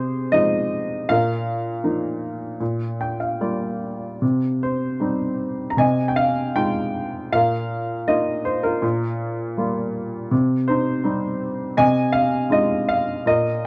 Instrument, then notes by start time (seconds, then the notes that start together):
upright piano
Already playing: C3 G#4 C5
0.32 F3 G#3 D#4 D#5
1.09 A#2 A#4 F5
1.84 F3 A#3 D#4
2.60 A#2
3.01 G5
3.20 F5
3.41 G3 A#3 F4 D5
4.22 C3
4.63 C5
5.00 G3 C4 D#4
5.70 A#5
5.77 C3 D#5 G#5
6.08 G5
6.16 F5
6.55 G#3 D#4 F4 G5
7.32 A#2 A#4 F5
8.08 A#3 D#4 F4 D#5
8.45 C5
8.63 F4 A#4
8.82 A#2
9.57 G3 A#3 F4
10.31 C3
10.68 D#4 C5
11.04 G3 C4 D#4
11.77 C3 D#5 G#5
12.12 F5
12.50 G#3 D#4 F4 D#5
12.89 F5
13.26 A#2 A#4 D#5